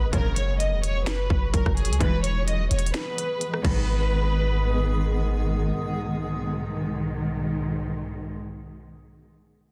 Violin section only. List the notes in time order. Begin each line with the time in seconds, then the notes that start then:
0.13 A#4
0.37 C#5
0.59 D#5
0.84 C#5
1.07 B4
1.54 A#4
1.77 G#4
2.01 B4
2.24 C#5
2.47 D#5
2.71 C#5
2.95 B4
3.65 B4